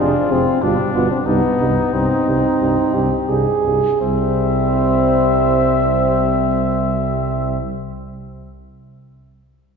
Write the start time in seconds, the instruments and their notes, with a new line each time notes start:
0.00 bass trombone F1, trombone C3, french horn D4, trumpet F4, flugelhorn G#4
0.29 bass trombone F1, trombone C3, french horn C4, flugelhorn G#4
0.62 bass trombone G1, trombone B2, french horn G3, trumpet D4, flugelhorn F4
0.94 bass trombone G1, trombone B2, french horn B3, flugelhorn F4
1.11 french horn C4
1.26 bass trombone C2, trombone G2, french horn B3, trumpet D#4, flugelhorn D#4
1.59 bass trombone C2, trombone G2, flugelhorn D#4
1.92 bass trombone C2, trombone G2, french horn C4, flugelhorn D#4
2.26 bass trombone C2, trombone G2
2.60 bass trombone C2, trombone G2
2.94 bass trombone C2, trombone G2, flugelhorn G4
3.29 bass trombone C2, trombone G2, flugelhorn G#4
3.64 bass trombone C2, trombone G2
4.00 bass trombone C2, trombone G3, french horn C4, flugelhorn C5, trumpet E5